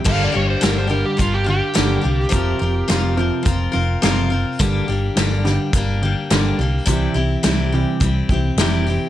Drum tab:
CC |x-------|--------|--------|--------|
HH |--x-x-x-|x-x-x-x-|x-x-x-x-|x-x-x-x-|
SD |--o---o-|--o---o-|--oo--o-|--o---o-|
BD |o---o---|o---o---|o---o---|o---oo--|